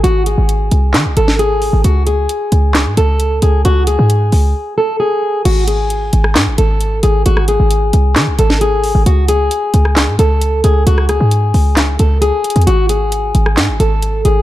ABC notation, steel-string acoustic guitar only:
X:1
M:4/4
L:1/8
Q:1/4=133
K:G#phr
V:1 name="Steel-string acoustic guitar"
F G4 A G2 | F G4 A2 G | F G4 A G2 | F G4 A2 G |
F G4 A G2 | F G4 A2 G | F G4 A G2 | F G4 A2 G |]